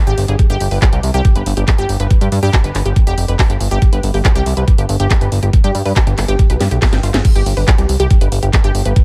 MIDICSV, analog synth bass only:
0, 0, Header, 1, 2, 480
1, 0, Start_track
1, 0, Tempo, 428571
1, 438, Time_signature, 4, 2, 24, 8
1, 10129, End_track
2, 0, Start_track
2, 0, Title_t, "Analog synth bass"
2, 0, Program_c, 0, 38
2, 78, Note_on_c, 0, 32, 85
2, 159, Note_off_c, 0, 32, 0
2, 198, Note_on_c, 0, 31, 103
2, 279, Note_off_c, 0, 31, 0
2, 318, Note_on_c, 0, 31, 93
2, 399, Note_off_c, 0, 31, 0
2, 558, Note_on_c, 0, 31, 86
2, 639, Note_off_c, 0, 31, 0
2, 678, Note_on_c, 0, 31, 99
2, 759, Note_off_c, 0, 31, 0
2, 798, Note_on_c, 0, 31, 90
2, 879, Note_off_c, 0, 31, 0
2, 1038, Note_on_c, 0, 36, 88
2, 1119, Note_off_c, 0, 36, 0
2, 1158, Note_on_c, 0, 36, 102
2, 1239, Note_off_c, 0, 36, 0
2, 1278, Note_on_c, 0, 36, 91
2, 1359, Note_off_c, 0, 36, 0
2, 1518, Note_on_c, 0, 31, 88
2, 1599, Note_off_c, 0, 31, 0
2, 1638, Note_on_c, 0, 31, 104
2, 1719, Note_off_c, 0, 31, 0
2, 1758, Note_on_c, 0, 31, 94
2, 1839, Note_off_c, 0, 31, 0
2, 1998, Note_on_c, 0, 31, 86
2, 2079, Note_off_c, 0, 31, 0
2, 2118, Note_on_c, 0, 31, 99
2, 2199, Note_off_c, 0, 31, 0
2, 2238, Note_on_c, 0, 31, 93
2, 2319, Note_off_c, 0, 31, 0
2, 2478, Note_on_c, 0, 43, 85
2, 2559, Note_off_c, 0, 43, 0
2, 2598, Note_on_c, 0, 43, 103
2, 2679, Note_off_c, 0, 43, 0
2, 2718, Note_on_c, 0, 43, 93
2, 2799, Note_off_c, 0, 43, 0
2, 2958, Note_on_c, 0, 31, 87
2, 3039, Note_off_c, 0, 31, 0
2, 3078, Note_on_c, 0, 31, 103
2, 3159, Note_off_c, 0, 31, 0
2, 3198, Note_on_c, 0, 31, 90
2, 3279, Note_off_c, 0, 31, 0
2, 3438, Note_on_c, 0, 29, 91
2, 3519, Note_off_c, 0, 29, 0
2, 3558, Note_on_c, 0, 29, 100
2, 3639, Note_off_c, 0, 29, 0
2, 3678, Note_on_c, 0, 29, 92
2, 3759, Note_off_c, 0, 29, 0
2, 3918, Note_on_c, 0, 31, 86
2, 3999, Note_off_c, 0, 31, 0
2, 4038, Note_on_c, 0, 31, 101
2, 4119, Note_off_c, 0, 31, 0
2, 4158, Note_on_c, 0, 31, 93
2, 4239, Note_off_c, 0, 31, 0
2, 4398, Note_on_c, 0, 31, 84
2, 4479, Note_off_c, 0, 31, 0
2, 4518, Note_on_c, 0, 31, 105
2, 4599, Note_off_c, 0, 31, 0
2, 4638, Note_on_c, 0, 31, 90
2, 4719, Note_off_c, 0, 31, 0
2, 4878, Note_on_c, 0, 36, 90
2, 4959, Note_off_c, 0, 36, 0
2, 4998, Note_on_c, 0, 36, 103
2, 5079, Note_off_c, 0, 36, 0
2, 5118, Note_on_c, 0, 36, 89
2, 5199, Note_off_c, 0, 36, 0
2, 5358, Note_on_c, 0, 31, 88
2, 5439, Note_off_c, 0, 31, 0
2, 5478, Note_on_c, 0, 31, 102
2, 5559, Note_off_c, 0, 31, 0
2, 5598, Note_on_c, 0, 31, 91
2, 5679, Note_off_c, 0, 31, 0
2, 5838, Note_on_c, 0, 31, 85
2, 5919, Note_off_c, 0, 31, 0
2, 5958, Note_on_c, 0, 31, 101
2, 6039, Note_off_c, 0, 31, 0
2, 6078, Note_on_c, 0, 31, 91
2, 6159, Note_off_c, 0, 31, 0
2, 6318, Note_on_c, 0, 43, 86
2, 6399, Note_off_c, 0, 43, 0
2, 6438, Note_on_c, 0, 43, 106
2, 6519, Note_off_c, 0, 43, 0
2, 6557, Note_on_c, 0, 43, 90
2, 6639, Note_off_c, 0, 43, 0
2, 6797, Note_on_c, 0, 31, 89
2, 6879, Note_off_c, 0, 31, 0
2, 6917, Note_on_c, 0, 31, 98
2, 6999, Note_off_c, 0, 31, 0
2, 7038, Note_on_c, 0, 31, 92
2, 7119, Note_off_c, 0, 31, 0
2, 7278, Note_on_c, 0, 35, 87
2, 7359, Note_off_c, 0, 35, 0
2, 7398, Note_on_c, 0, 43, 105
2, 7479, Note_off_c, 0, 43, 0
2, 7518, Note_on_c, 0, 35, 93
2, 7599, Note_off_c, 0, 35, 0
2, 7758, Note_on_c, 0, 31, 86
2, 7839, Note_off_c, 0, 31, 0
2, 7878, Note_on_c, 0, 31, 102
2, 7959, Note_off_c, 0, 31, 0
2, 7998, Note_on_c, 0, 31, 94
2, 8079, Note_off_c, 0, 31, 0
2, 8238, Note_on_c, 0, 31, 87
2, 8319, Note_off_c, 0, 31, 0
2, 8358, Note_on_c, 0, 31, 102
2, 8439, Note_off_c, 0, 31, 0
2, 8478, Note_on_c, 0, 31, 92
2, 8559, Note_off_c, 0, 31, 0
2, 8718, Note_on_c, 0, 36, 89
2, 8799, Note_off_c, 0, 36, 0
2, 8838, Note_on_c, 0, 36, 102
2, 8919, Note_off_c, 0, 36, 0
2, 8958, Note_on_c, 0, 36, 90
2, 9039, Note_off_c, 0, 36, 0
2, 9198, Note_on_c, 0, 31, 87
2, 9279, Note_off_c, 0, 31, 0
2, 9318, Note_on_c, 0, 31, 102
2, 9399, Note_off_c, 0, 31, 0
2, 9438, Note_on_c, 0, 31, 92
2, 9519, Note_off_c, 0, 31, 0
2, 9678, Note_on_c, 0, 31, 86
2, 9759, Note_off_c, 0, 31, 0
2, 9798, Note_on_c, 0, 31, 99
2, 9879, Note_off_c, 0, 31, 0
2, 9918, Note_on_c, 0, 31, 95
2, 9999, Note_off_c, 0, 31, 0
2, 10129, End_track
0, 0, End_of_file